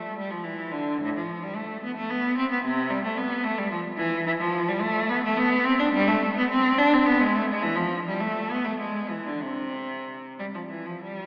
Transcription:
Already playing: A3
0.18 G3
0.31 F3
0.44 E3
0.72 D3
1.01 A2
1.16 F3
1.44 G3
1.56 A3
1.83 B3
1.97 A3
2.10 B3
2.37 C4
2.51 B3
2.64 C3
2.90 G3
3.04 A3
3.18 B3
3.44 A3
3.58 G3
3.71 F3
3.97 E3
4.26 E3
4.40 F3
4.69 G3
4.81 A3
5.09 B3
5.24 A3
5.37 B3
5.64 C4
5.79 D4
5.93 G3
6.08 A3
6.36 B3
6.50 C4
6.78 D4
6.93 C4
7.06 B3
7.21 G#3
7.36 A3
7.49 G#3
7.62 E3
7.76 F3
8.07 G3
8.21 A3
8.50 B3
8.65 A3
8.79 G#3
9.09 E3
9.27 D3
9.41 C3
10.39 G3
10.54 F3
10.69 E3
10.86 F3
11.03 G3

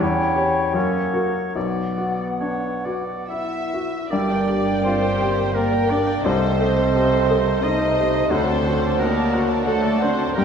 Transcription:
0.00 E2 C#4 E4 C#5 G5
0.36 G4 C#5
0.74 F#2 A#3 C#4 C#5 F#5
1.14 F#4 A#4
1.55 B1 B3 D5 F#5
1.98 F#4
2.40 D4 C#5
2.85 F#4 D5
3.29 E4 E5
3.74 F#4
4.10 G1 G2 A#3 D4 G4 D5 G5
4.29 A#4 G5
4.48 G4 D5
4.65 A#4 G5
4.82 C4 F4 G4 C5 D5
5.01 A#4 G5
5.19 G4 D5
5.36 A#4 G5
5.53 A#3 G4 A#4 D5 G5
5.71 A#4 G5
5.88 D4 G4 D5
6.06 A#4 G5
6.23 C2 C3 A3 C4 A4 C5 D#5 A5
6.40 A4 C5
6.59 G4 A4 C5 D#5
6.74 A4 C5
6.92 G4 A4 C5 D#5
7.09 A4 C5
7.26 A4 A#4 C5 D#5
7.43 A4 C5
7.61 A3 D#4 C5 D#5 A5
7.79 A4 C5
7.96 C3 C5 D#5
8.14 A4 C5
8.30 D2 D3 F#3 C4 A4 C5 D5 F#5 A5
8.47 D5 A5
8.65 F#4 C5 F#5
8.81 D5 A5
8.97 A#3 G4 A#4 C5 F#5
9.02 D#4
9.15 D5 A5
9.32 F#4 C5 F#5
9.49 D5 A5
9.64 F#3 A3 A4 C5 D5 F#5 A5
9.82 D5 A5
9.99 C4 D4 C5 F#5
10.17 D5 A5
10.34 G1 G2 G3 A#3 G4 A#4 D5 G5 A#5

